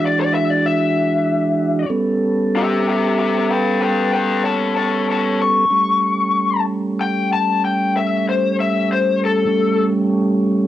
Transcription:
Already playing: E3 G#3 D4 F#4
0.06 D5
0.21 D5
0.35 E5
0.50 D5
0.66 E5
1.90 G3 B3 C#4 A4
2.56 G4 E5
2.89 G4 E5
3.19 G4 E5
3.51 B4 G5
3.82 B4 G5
4.13 B4 G5
4.44 C#5 A5
4.77 C#5 A5
5.10 C#5 A5
5.42 C#6
5.70 G3 A3 C#4
7.01 G5
7.33 A5
7.65 G5
7.97 E5
8.29 C5
8.60 E5
8.93 C5
9.25 A4
9.46 G3 A3 C#4

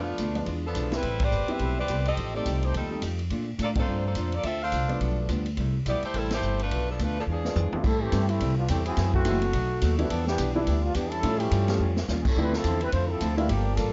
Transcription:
Already playing: F2 F3 A3 B3 D4 F4
0.18 D2 B2 F3 A3 D4, kick, hi-hat pedal, ride
0.35 F3 G#3 B3 D4, ride
0.46 E2 E3 G#3 D4 F4, kick, ride
0.66 F3 B3 D4 A4
0.74 B1 E3 G#3 D4 F4, kick, hi-hat pedal, ride
0.91 G3 B3 C4 E4 B4, snare, ride
0.95 E4
1.02 A1 A3 C4 G4 B4, kick, ride
1.20 C4 G4 B4 D5, kick, ride
1.31 G1 A3 C4 G4 B4, hi-hat pedal
1.48 G3 B3 C4 E4 G4 B4 E5, muted upright bass stroke, ride
1.59 B1 A3 C4 G4 B4, kick, ride
1.79 C4 G4 B4 D5
1.88 C2 G3 A3 B3 C4 G4 B4, kick, hi-hat pedal, ride
2.05 C4 G4 A4 D#5, ride
2.17 A1 F3 A3 D#4 G4, kick, ride
2.34 G3 A3 C4 D#4 G4 A4 D5
2.46 C2 F3 A3 D#4 G4, kick, hi-hat pedal, ride
2.63 A3 D#4 G4 C5, ride
2.74 D#2 F3 G3 A3 C4 D#4 G4 A4, kick, ride
2.90 G3 A3 C4 D#4
3.01 F2 F3 A3 D#4 G4, kick, hi-hat pedal, ride
3.19 ride
3.30 A#2 A3 D4 F4, kick, ride
3.58 A2 A#2 A3 D4 F4 A4, kick, hi-hat pedal, ride
3.62 A#3 F4 D5
3.75 F3 A3 A#3 C4 D4 A4 C5, kick, ride
3.80 F4
3.86 G2 A#2 A3 D4 F4
4.07 A#3 F4 A4 C5
4.15 F2 A#2 A3 D4 F4, kick, hi-hat pedal, ride
4.32 A#3 F4 A4 D5, ride
4.43 D2 D3 A3 C4 F4 A4 E5, kick, ride
4.63 D4 A4 C5 F5
4.72 C2 D3 A3 C4 F4, kick, hi-hat pedal, ride
4.88 F3 A3 B3 D4, ride
5.00 B1 G2 F3 B3 D4, kick, ride
5.28 D2 G2 F3 B3 D4, kick, hi-hat pedal, ride
5.46 ride
5.57 C2 C3 G3 A3 E4, kick, ride
5.85 B1 C3 G3 A3 B3 E4 G4 D5, kick, hi-hat pedal, ride
6.02 A3 E4 G4 C5, muted upright bass stroke, ride
6.14 A1 C3 G3 A3 C4 E4 A4, kick, ride
6.30 A3 E4 G4 C5, snare, ride
6.41 G1 C3 G3 A3 E4, hi-hat pedal
6.59 A3 D4 F4 B4, ride
6.71 B1 B2 F3 A3 D4, kick, ride
6.90 F3 B3 D4 A4
6.99 D2 B2 F3 A3 D4 F4 B4, kick, hi-hat pedal, ride
7.19 F3 B3 D4 A4
7.27 E2 E3 G#3 D4 F4
7.31 F3 B3 D4 G#4
7.45 G#3 B3 D4 F4, snare
7.55 F2 E3 G#3 D4 F4, floor tom, hi-hat pedal
7.72 A2 G3 G#3 B3 C4 D4 E4 F4, muted upright bass stroke, floor tom
7.83 A2 G3 C4 E4 A4, kick, crash
8.02 E3 A3 C4 G4
8.12 G2 A2 G3 A3 B3 C4 E4, kick, hi-hat pedal, ride
8.29 G3 A3 C4 E4, ride
8.39 C2 A2 G3 C4 E4, kick, ride
8.58 G3 B3 D4 F4
8.68 E2 A2 E3 G3 A3 C4 E4 G4, kick, hi-hat pedal, ride
8.85 F#3 C4 E4 G#4, ride
8.96 F#2 E3 A3 C4, kick, snare, ride
9.14 E3 A3 C4 F#4, kick
9.25 F#1 F#2 E3 F#3 G#3 A3 C4 E4, kick, hi-hat pedal, ride
9.42 ride
9.53 B1 B2 F#3 A3 D#4, kick, ride
9.81 D#2 B2 F#3 A3 D#4, kick, hi-hat pedal, ride
9.98 D#3 E3 G3 A3 B3 D4 E4 F#4, ride
10.10 E2 E3 F3 B3 D4 G4 A4, kick, ride
10.27 E3 B3 D4 G4, snare
10.38 B1 E3 B3 D4 G4, kick, hi-hat pedal, ride
10.55 E3 G3 B3 D4 E4
10.66 D2 E3 B3 D4 G4, kick, ride
10.82 G3 B3 D4 F4
10.94 E2 E3 B3 D4 G4, kick, hi-hat pedal, ride
11.10 G3 C#4 E4 A4, ride
11.22 A2 F3 G3 A3 C#4 E4 F4, kick, ride
11.39 E3 A3 C#4 G4, ride
11.51 G2 A2 G3 C#4 F4, kick, hi-hat pedal, ride
11.68 F3 G3 A3 C#4 G4, snare, ride
11.79 F2 A2 G3 C#4 F4
11.97 snare
12.08 D#2 A2 G3 C#4 F4, snare, hi-hat pedal
12.21 G#4
12.25 G3 C#4 E4 A4, kick, crash
12.36 D2 D3 F3 G3 A3 C4 D4 E4 B4, kick
12.53 F3 C4 E4 A4, snare
12.64 E2 D3 F3 C4 E4, kick, hi-hat pedal, ride
12.81 G3 C4 E4 B4, ride
12.92 F2 D3 F3 A3 C4 E4 F4 C5, kick, ride
13.11 F3 C4 E4 A4
13.21 D2 D3 F3 C4 E4, kick, hi-hat pedal, ride
13.37 E3 G3 A3 A#3 C4 D4 E4 F4, ride
13.49 G1 F3 G3 A#3 D4 F4 G4 A4, kick, ride
13.77 A1 F3 G3 A#3 D4 F4 A4, kick, hi-hat pedal, ride

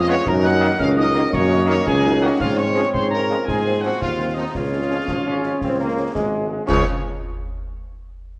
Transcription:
Already playing: F2 F4 G#4 C#5
0.00 D#5
0.08 G#3 B3 C#4 C#5 C#6
0.25 F#2 D#4 A#4 D#5 A#5, concert bass drum, snare, crash
0.43 F#3 A#3 D#4 F#5 F#6
0.60 D#3 F#3 A#3 D#4
0.79 C#2 C#4 F5 F6, concert bass drum, snare
0.97 F#3 A#3 D#4 D#5 D#6
1.14 D#3 F#3 A#3 D#4, snare
1.32 F#2 A#3 C#5 C#6, concert bass drum, snare
1.51 F#3 A#3 D#4
1.66 D#3 F#3 A#3 D#4 C#5 C#6
1.85 C#2 C#4 G#4 G#5, concert bass drum, snare
2.04 F#3 A#3 D#4
2.22 D#3 F#3 A#3 D#4 F#4 F#5
2.40 G#2 C4 F4 C#5 F5, concert bass drum, snare, crash
2.57 F3 G#3 C#4 C#5 C#6
2.75 F3 G#3 C#4
2.93 G#2 C5 C6, concert bass drum, snare
3.10 F3 G#3 C#4 A#4 A#5
3.29 F3 G#3 C#4, snare
3.45 G#2 G#4 C5 G#5, concert bass drum, snare
3.65 F3 A#3 C4
3.81 F3 A#3 C4 F#4 F#5
3.99 D#2 F4 F5, concert bass drum, snare
4.18 F3 A#3 C4
4.34 F3 A#3 C4 D#4 D#5
4.52 C#2 C#4 F4 G#4 C#5 F5, concert bass drum, snare, crash
4.72 F3 G#3 C#4
4.90 F3 G#3 C#4
5.08 G#1 F3, concert bass drum, snare
5.26 F3 G#3 C#4
5.43 F3 G#3 C#4, snare
5.61 C#2 C4, concert bass drum, snare
5.80 F3 G#3 A#3 C#4
5.97 F3 G#3 C#4
6.14 G#1 G#3, concert bass drum, snare
6.32 F3 G#3 C#4
6.49 F3 G#3 C#4
6.66 C#2 F3 G#3 C#4 G#4 C#5 F5 C#6, concert bass drum, snare, crash

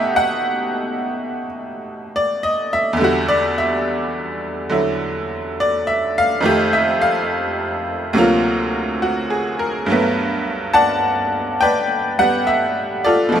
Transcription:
Already playing: B2 A3 D#4 G4 E5 F#5
0.16 F#5
2.16 D5
2.43 D#5
2.73 E5
2.93 E2 D3
3.01 G3 F#4
3.28 D5
3.58 E5
4.69 D3 F#3 E4
5.60 D5
5.87 E5
6.18 F5
6.41 F2 D#3 A3
6.46 G4
6.73 E5
7.01 F5
8.13 D2 C3 F#3 A#3
8.18 F4
9.02 F#4
9.30 G#4
9.59 A#4
9.86 G2 F#3 A3
9.92 B3
10.73 D5 F#5 A5
11.61 B4 D5 G5
12.19 G3 B3 F#5
12.47 E5
13.04 F4 A4 D5
13.29 B2 F3
13.35 A3

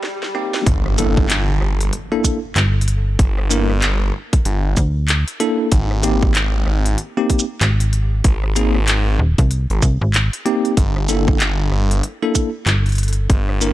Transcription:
Already playing: swell
0.03 snare
0.23 snare
0.35 A#3 C4 D#4 G4
0.54 snare
0.66 G1, kick, closed hi-hat, impact
0.86 cross-stick
0.98 A#3 D4 E4 A4, closed hi-hat, shaker
1.17 kick
1.30 clap, closed hi-hat
1.61 G1, cross-stick
1.81 closed hi-hat
1.93 closed hi-hat
2.12 A#3 D4 E4 A4
2.24 kick, closed hi-hat, shaker
2.56 G1, clap, closed hi-hat
2.81 closed hi-hat
2.88 closed hi-hat
3.19 G1, kick, closed hi-hat
3.38 cross-stick
3.51 A#3 D4 E4 A#4, closed hi-hat, shaker
3.70 cross-stick
3.82 clap, closed hi-hat
4.33 kick, closed hi-hat
4.45 G1, closed hi-hat
4.77 D2, kick, closed hi-hat, shaker
5.08 clap, closed hi-hat
5.28 closed hi-hat
5.40 A#3 D4 E4 A4, closed hi-hat
5.72 G#1, kick, closed hi-hat
5.91 cross-stick
6.03 A#3 C4 D#4 G4, closed hi-hat, shaker
6.23 kick
6.35 clap, closed hi-hat
6.66 G#1, cross-stick
6.86 closed hi-hat
6.98 closed hi-hat
7.17 A#3 C4 D#4 G4
7.30 kick, closed hi-hat
7.39 shaker
7.61 G#1, clap, closed hi-hat
7.80 closed hi-hat
7.93 closed hi-hat
8.24 G#1, kick, closed hi-hat
8.44 cross-stick
8.56 A#3 C4 D#4 G#4, closed hi-hat, shaker
8.75 cross-stick
8.88 clap, closed hi-hat
9.19 D#1
9.38 C2, kick, closed hi-hat
9.51 closed hi-hat
9.70 G#1, closed hi-hat
9.82 C2, kick, closed hi-hat, shaker
10.01 G#1
10.14 clap, closed hi-hat
10.33 closed hi-hat
10.46 A#3 C4 D#4 G4, closed hi-hat
10.65 closed hi-hat
10.77 G1, kick, closed hi-hat
10.96 cross-stick
11.09 A#3 D4 E4 A4, closed hi-hat, shaker
11.28 kick
11.40 clap, closed hi-hat
11.72 G1, cross-stick
11.91 closed hi-hat
12.03 closed hi-hat
12.23 A#3 D4 E4 A4
12.35 kick, closed hi-hat, shaker
12.66 G1, clap, closed hi-hat
12.86 closed hi-hat
12.89 closed hi-hat
12.92 closed hi-hat
12.95 closed hi-hat
12.98 closed hi-hat
13.03 closed hi-hat
13.08 closed hi-hat
13.13 closed hi-hat
13.30 G1, kick, closed hi-hat
13.49 cross-stick
13.61 A#3 D4 E4 A#4, closed hi-hat, shaker

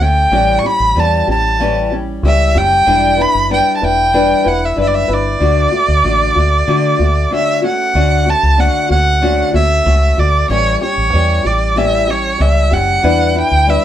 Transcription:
0.00 D2 A3 C#4 G5
0.31 A1 A2 E3 G3 C#4 G4
0.59 C#6
0.63 G3 C#4 G4 B5
0.80 A1
0.96 E2 E3 G3 C#4 G4
1.00 A5
1.27 A1 G3 C#4 G4 A5
1.60 A2 E3 G3 C#4 G4
1.92 G3 C#4 G4
2.23 C#2 E3 G3 C#4 G4 E5
2.55 F#1 G3 C#4 G4 G5
2.86 E1 E3 G3 D4 E4 B4
3.17 D4 E4 B4
3.22 B5
3.35 F#1
3.50 G3 D4 E4 B4 G5
3.77 A5
3.82 E1 D4 E4 B4 G5
4.13 E3 G3 D4 E4 B4
4.44 E1 D4 E4 B4 F#5
4.65 E5
4.76 F#1 G3 D4 E4 B4
4.81 E5
4.87 D5
4.94 E5
5.08 G1 D4 E4 B4
5.13 D5
5.40 D2 D3 A3 F#4
5.71 A3 F#4
5.88 D2
6.04 A1 D3 A3 F#4
6.35 D2 A3 F#4
6.67 D3 A3 F#4
6.99 D2 A3 F#4
7.31 D3 A3 C#4 F#4 E5
7.62 A3 C#4 F#4
7.66 F#5
7.94 D2 D3 A3 C#4 F#4
8.26 A3 C#4 F#4
8.30 A5
8.43 C#2
8.57 D3 A3 C#4 F#4 F#5
8.89 D2 A3 C#4 F#4 F#5
9.22 D3 A3 C#4 F#4
9.53 D2 A3 C#4 F#4 E5
9.85 C#2 A3 C#4 F#4
10.17 D2 A3 F#4 D5
10.49 A1 A2 E3 G3 C#4 G4 C#5
10.81 G3 C#4 G4 C#5
10.97 A1
11.12 E2 E3 G3 C#4 G4
11.44 A1 G3 G4 D5
11.76 A2 E3 G3 C#4 G4 E5
12.07 G3 C#4 G4 C#5
12.39 C#2 E3 G3 C#4 G4 E5
12.71 F#1 G3 C#4 G4 F#5
13.03 E2 E3 G3 D4 E4 B4
13.34 D4 E4 B4 G5
13.51 D2
13.67 G3 D4 E4 B4 E5

